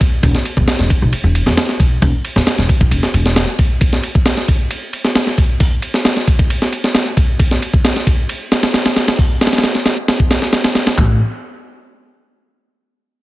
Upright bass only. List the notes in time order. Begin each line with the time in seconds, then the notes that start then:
0.23 E1
0.57 E2
0.80 E1
1.02 B1
1.12 muted upright bass stroke
1.24 E1
1.46 E2
1.80 B1
2.02 E1
2.36 E2
2.58 E1
2.81 B1
2.91 E1
3.14 E1
10.98 A1